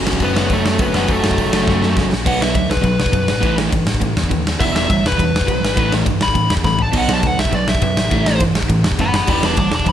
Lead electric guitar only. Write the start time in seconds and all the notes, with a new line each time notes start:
0.24 B3 B4
0.53 A3 A4
0.65 A3 A4
0.81 B3 B4
1.10 A3 A4
2.28 F#5
2.42 E5
2.55 E5
2.70 B4
4.60 E5
4.76 E5
4.91 E5
5.07 B4
6.23 B5
6.65 B5
6.82 A5
6.97 F#5
7.14 A5
7.27 F#5
7.40 E5
7.55 D5
7.69 E5
7.83 E5
9.00 F#5 B5
9.16 F#5 B5
9.30 G5 B5
9.46 A5 D6
9.59 A5 D6
9.75 A5 D6
9.89 B5